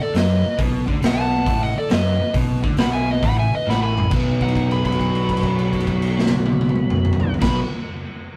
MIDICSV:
0, 0, Header, 1, 8, 480
1, 0, Start_track
1, 0, Tempo, 439883
1, 644, Time_signature, 4, 2, 24, 8
1, 9131, End_track
2, 0, Start_track
2, 0, Title_t, "Electric slide guitar"
2, 0, Program_c, 0, 29
2, 17, Note_on_c, 0, 74, 79
2, 165, Note_off_c, 0, 74, 0
2, 191, Note_on_c, 0, 75, 86
2, 644, Note_off_c, 0, 75, 0
2, 1152, Note_on_c, 0, 78, 103
2, 1311, Note_off_c, 0, 78, 0
2, 1311, Note_on_c, 0, 81, 76
2, 1765, Note_off_c, 0, 81, 0
2, 1776, Note_on_c, 0, 78, 79
2, 1927, Note_off_c, 0, 78, 0
2, 1941, Note_on_c, 0, 74, 66
2, 2090, Note_off_c, 0, 74, 0
2, 2100, Note_on_c, 0, 75, 89
2, 2560, Note_off_c, 0, 75, 0
2, 3056, Note_on_c, 0, 83, 93
2, 3195, Note_off_c, 0, 83, 0
2, 3200, Note_on_c, 0, 80, 69
2, 3359, Note_off_c, 0, 80, 0
2, 3393, Note_on_c, 0, 75, 86
2, 3536, Note_off_c, 0, 75, 0
2, 3545, Note_on_c, 0, 83, 96
2, 3692, Note_off_c, 0, 83, 0
2, 3704, Note_on_c, 0, 80, 84
2, 3852, Note_off_c, 0, 80, 0
2, 3872, Note_on_c, 0, 75, 83
2, 4016, Note_off_c, 0, 75, 0
2, 4036, Note_on_c, 0, 83, 82
2, 4170, Note_off_c, 0, 83, 0
2, 4183, Note_on_c, 0, 83, 95
2, 4486, Note_off_c, 0, 83, 0
2, 4826, Note_on_c, 0, 78, 83
2, 5128, Note_off_c, 0, 78, 0
2, 5151, Note_on_c, 0, 83, 70
2, 5295, Note_off_c, 0, 83, 0
2, 5309, Note_on_c, 0, 83, 94
2, 7989, Note_off_c, 0, 83, 0
2, 8098, Note_on_c, 0, 83, 89
2, 8268, Note_off_c, 0, 83, 0
2, 9131, End_track
3, 0, Start_track
3, 0, Title_t, "Lead electric guitar"
3, 0, Program_c, 1, 29
3, 25, Note_on_c, 1, 69, 84
3, 163, Note_off_c, 1, 69, 0
3, 191, Note_on_c, 1, 71, 77
3, 625, Note_off_c, 1, 71, 0
3, 1158, Note_on_c, 1, 75, 76
3, 1307, Note_off_c, 1, 75, 0
3, 1307, Note_on_c, 1, 78, 69
3, 1773, Note_off_c, 1, 78, 0
3, 1777, Note_on_c, 1, 75, 75
3, 1921, Note_off_c, 1, 75, 0
3, 1948, Note_on_c, 1, 69, 80
3, 2087, Note_off_c, 1, 69, 0
3, 2109, Note_on_c, 1, 71, 85
3, 2545, Note_off_c, 1, 71, 0
3, 3057, Note_on_c, 1, 78, 77
3, 3202, Note_off_c, 1, 78, 0
3, 3215, Note_on_c, 1, 76, 76
3, 3360, Note_off_c, 1, 76, 0
3, 3388, Note_on_c, 1, 71, 67
3, 3528, Note_off_c, 1, 71, 0
3, 3533, Note_on_c, 1, 78, 73
3, 3680, Note_off_c, 1, 78, 0
3, 3699, Note_on_c, 1, 76, 67
3, 3843, Note_off_c, 1, 76, 0
3, 3871, Note_on_c, 1, 71, 81
3, 4009, Note_off_c, 1, 71, 0
3, 4024, Note_on_c, 1, 78, 74
3, 4166, Note_off_c, 1, 78, 0
3, 4179, Note_on_c, 1, 80, 73
3, 4472, Note_off_c, 1, 80, 0
3, 4833, Note_on_c, 1, 63, 75
3, 5119, Note_off_c, 1, 63, 0
3, 5161, Note_on_c, 1, 68, 73
3, 5295, Note_off_c, 1, 68, 0
3, 5332, Note_on_c, 1, 66, 73
3, 8001, Note_off_c, 1, 66, 0
3, 8131, Note_on_c, 1, 66, 74
3, 8279, Note_off_c, 1, 66, 0
3, 9131, End_track
4, 0, Start_track
4, 0, Title_t, "Overdriven electric guitar"
4, 0, Program_c, 2, 29
4, 159, Note_on_c, 2, 54, 96
4, 473, Note_off_c, 2, 54, 0
4, 639, Note_on_c, 2, 47, 108
4, 945, Note_off_c, 2, 47, 0
4, 950, Note_on_c, 2, 50, 98
4, 1103, Note_off_c, 2, 50, 0
4, 1108, Note_on_c, 2, 47, 98
4, 1592, Note_off_c, 2, 47, 0
4, 1605, Note_on_c, 2, 45, 91
4, 1917, Note_off_c, 2, 45, 0
4, 2072, Note_on_c, 2, 54, 111
4, 2391, Note_off_c, 2, 54, 0
4, 2558, Note_on_c, 2, 47, 103
4, 2866, Note_off_c, 2, 47, 0
4, 2870, Note_on_c, 2, 50, 110
4, 3028, Note_off_c, 2, 50, 0
4, 3032, Note_on_c, 2, 47, 98
4, 3512, Note_off_c, 2, 47, 0
4, 3517, Note_on_c, 2, 45, 107
4, 3834, Note_off_c, 2, 45, 0
4, 4007, Note_on_c, 2, 45, 98
4, 4465, Note_off_c, 2, 45, 0
4, 4469, Note_on_c, 2, 47, 90
4, 4491, Note_on_c, 2, 54, 97
4, 4517, Note_on_c, 2, 59, 101
4, 8075, Note_off_c, 2, 47, 0
4, 8079, Note_on_c, 2, 47, 84
4, 8099, Note_off_c, 2, 54, 0
4, 8103, Note_on_c, 2, 54, 95
4, 8120, Note_off_c, 2, 59, 0
4, 8125, Note_on_c, 2, 59, 100
4, 8264, Note_off_c, 2, 47, 0
4, 8276, Note_off_c, 2, 54, 0
4, 8287, Note_off_c, 2, 59, 0
4, 9131, End_track
5, 0, Start_track
5, 0, Title_t, "Picked electric bass"
5, 0, Program_c, 3, 34
5, 158, Note_on_c, 3, 42, 91
5, 459, Note_off_c, 3, 42, 0
5, 648, Note_on_c, 3, 35, 89
5, 945, Note_off_c, 3, 35, 0
5, 967, Note_on_c, 3, 38, 91
5, 1115, Note_off_c, 3, 38, 0
5, 1122, Note_on_c, 3, 35, 100
5, 1571, Note_off_c, 3, 35, 0
5, 1600, Note_on_c, 3, 33, 93
5, 1902, Note_off_c, 3, 33, 0
5, 2100, Note_on_c, 3, 42, 96
5, 2393, Note_off_c, 3, 42, 0
5, 2562, Note_on_c, 3, 35, 79
5, 2864, Note_off_c, 3, 35, 0
5, 2886, Note_on_c, 3, 38, 95
5, 3035, Note_off_c, 3, 38, 0
5, 3045, Note_on_c, 3, 35, 90
5, 3493, Note_off_c, 3, 35, 0
5, 3519, Note_on_c, 3, 33, 89
5, 3822, Note_off_c, 3, 33, 0
5, 4009, Note_on_c, 3, 33, 86
5, 4455, Note_off_c, 3, 33, 0
5, 4491, Note_on_c, 3, 35, 85
5, 7980, Note_off_c, 3, 35, 0
5, 8099, Note_on_c, 3, 35, 94
5, 8262, Note_off_c, 3, 35, 0
5, 9131, End_track
6, 0, Start_track
6, 0, Title_t, "Muted overdriven electric guitar strokes"
6, 491, Note_on_c, 9, 29, 62
6, 601, Note_off_c, 9, 29, 0
6, 1921, Note_on_c, 9, 29, 61
6, 2031, Note_off_c, 9, 29, 0
6, 2403, Note_on_c, 9, 29, 60
6, 2512, Note_off_c, 9, 29, 0
6, 3844, Note_on_c, 9, 29, 53
6, 3953, Note_off_c, 9, 29, 0
6, 9131, End_track
7, 0, Start_track
7, 0, Title_t, "Muted picked electric bass strokes"
7, 10, Note_on_c, 9, 29, 40
7, 119, Note_off_c, 9, 29, 0
7, 485, Note_on_c, 9, 29, 44
7, 594, Note_off_c, 9, 29, 0
7, 1927, Note_on_c, 9, 29, 39
7, 2037, Note_off_c, 9, 29, 0
7, 2403, Note_on_c, 9, 29, 36
7, 2512, Note_off_c, 9, 29, 0
7, 3857, Note_on_c, 9, 29, 38
7, 3966, Note_off_c, 9, 29, 0
7, 9131, End_track
8, 0, Start_track
8, 0, Title_t, "Drums"
8, 158, Note_on_c, 9, 46, 52
8, 178, Note_on_c, 9, 38, 83
8, 268, Note_off_c, 9, 46, 0
8, 287, Note_off_c, 9, 38, 0
8, 637, Note_on_c, 9, 46, 61
8, 640, Note_on_c, 9, 36, 110
8, 746, Note_off_c, 9, 46, 0
8, 750, Note_off_c, 9, 36, 0
8, 959, Note_on_c, 9, 36, 80
8, 1068, Note_off_c, 9, 36, 0
8, 1116, Note_on_c, 9, 46, 61
8, 1136, Note_on_c, 9, 38, 105
8, 1225, Note_off_c, 9, 46, 0
8, 1245, Note_off_c, 9, 38, 0
8, 1597, Note_on_c, 9, 36, 105
8, 1597, Note_on_c, 9, 46, 51
8, 1706, Note_off_c, 9, 46, 0
8, 1707, Note_off_c, 9, 36, 0
8, 2066, Note_on_c, 9, 46, 51
8, 2086, Note_on_c, 9, 38, 96
8, 2176, Note_off_c, 9, 46, 0
8, 2195, Note_off_c, 9, 38, 0
8, 2553, Note_on_c, 9, 46, 57
8, 2556, Note_on_c, 9, 36, 98
8, 2662, Note_off_c, 9, 46, 0
8, 2665, Note_off_c, 9, 36, 0
8, 2878, Note_on_c, 9, 36, 86
8, 2987, Note_off_c, 9, 36, 0
8, 3021, Note_on_c, 9, 46, 58
8, 3040, Note_on_c, 9, 38, 100
8, 3130, Note_off_c, 9, 46, 0
8, 3150, Note_off_c, 9, 38, 0
8, 3521, Note_on_c, 9, 36, 99
8, 3522, Note_on_c, 9, 46, 48
8, 3631, Note_off_c, 9, 36, 0
8, 3631, Note_off_c, 9, 46, 0
8, 4030, Note_on_c, 9, 38, 51
8, 4139, Note_off_c, 9, 38, 0
8, 4337, Note_on_c, 9, 45, 89
8, 4405, Note_on_c, 9, 43, 78
8, 4446, Note_off_c, 9, 45, 0
8, 4484, Note_on_c, 9, 49, 87
8, 4489, Note_on_c, 9, 36, 106
8, 4515, Note_off_c, 9, 43, 0
8, 4593, Note_off_c, 9, 49, 0
8, 4598, Note_off_c, 9, 36, 0
8, 4810, Note_on_c, 9, 36, 58
8, 4810, Note_on_c, 9, 49, 42
8, 4892, Note_on_c, 9, 57, 47
8, 4919, Note_off_c, 9, 36, 0
8, 4919, Note_off_c, 9, 49, 0
8, 4970, Note_on_c, 9, 36, 65
8, 4978, Note_on_c, 9, 49, 49
8, 5001, Note_off_c, 9, 57, 0
8, 5080, Note_off_c, 9, 36, 0
8, 5087, Note_off_c, 9, 49, 0
8, 5139, Note_on_c, 9, 57, 52
8, 5248, Note_off_c, 9, 57, 0
8, 5291, Note_on_c, 9, 36, 66
8, 5294, Note_on_c, 9, 49, 54
8, 5371, Note_on_c, 9, 57, 48
8, 5400, Note_off_c, 9, 36, 0
8, 5403, Note_off_c, 9, 49, 0
8, 5451, Note_on_c, 9, 36, 56
8, 5460, Note_on_c, 9, 49, 45
8, 5480, Note_off_c, 9, 57, 0
8, 5560, Note_off_c, 9, 36, 0
8, 5569, Note_off_c, 9, 49, 0
8, 5620, Note_on_c, 9, 57, 45
8, 5729, Note_off_c, 9, 57, 0
8, 5772, Note_on_c, 9, 36, 61
8, 5776, Note_on_c, 9, 49, 44
8, 5858, Note_on_c, 9, 57, 56
8, 5882, Note_off_c, 9, 36, 0
8, 5885, Note_off_c, 9, 49, 0
8, 5925, Note_on_c, 9, 49, 48
8, 5926, Note_on_c, 9, 36, 60
8, 5967, Note_off_c, 9, 57, 0
8, 6034, Note_off_c, 9, 49, 0
8, 6035, Note_off_c, 9, 36, 0
8, 6096, Note_on_c, 9, 57, 47
8, 6205, Note_off_c, 9, 57, 0
8, 6251, Note_on_c, 9, 36, 60
8, 6255, Note_on_c, 9, 49, 48
8, 6333, Note_on_c, 9, 57, 47
8, 6360, Note_off_c, 9, 36, 0
8, 6364, Note_off_c, 9, 49, 0
8, 6407, Note_on_c, 9, 36, 67
8, 6410, Note_on_c, 9, 49, 51
8, 6442, Note_off_c, 9, 57, 0
8, 6516, Note_off_c, 9, 36, 0
8, 6520, Note_off_c, 9, 49, 0
8, 6570, Note_on_c, 9, 57, 54
8, 6679, Note_off_c, 9, 57, 0
8, 6752, Note_on_c, 9, 38, 73
8, 6833, Note_off_c, 9, 38, 0
8, 6833, Note_on_c, 9, 38, 91
8, 6882, Note_on_c, 9, 48, 90
8, 6942, Note_off_c, 9, 38, 0
8, 6991, Note_off_c, 9, 48, 0
8, 7046, Note_on_c, 9, 48, 103
8, 7155, Note_off_c, 9, 48, 0
8, 7213, Note_on_c, 9, 48, 101
8, 7303, Note_on_c, 9, 47, 89
8, 7322, Note_off_c, 9, 48, 0
8, 7372, Note_off_c, 9, 47, 0
8, 7372, Note_on_c, 9, 47, 87
8, 7481, Note_off_c, 9, 47, 0
8, 7533, Note_on_c, 9, 45, 95
8, 7642, Note_off_c, 9, 45, 0
8, 7691, Note_on_c, 9, 45, 101
8, 7778, Note_off_c, 9, 45, 0
8, 7778, Note_on_c, 9, 45, 103
8, 7854, Note_on_c, 9, 43, 88
8, 7887, Note_off_c, 9, 45, 0
8, 7963, Note_off_c, 9, 43, 0
8, 8010, Note_on_c, 9, 43, 88
8, 8088, Note_on_c, 9, 49, 97
8, 8095, Note_on_c, 9, 36, 110
8, 8108, Note_on_c, 9, 38, 97
8, 8119, Note_off_c, 9, 43, 0
8, 8198, Note_off_c, 9, 49, 0
8, 8204, Note_off_c, 9, 36, 0
8, 8217, Note_off_c, 9, 38, 0
8, 9131, End_track
0, 0, End_of_file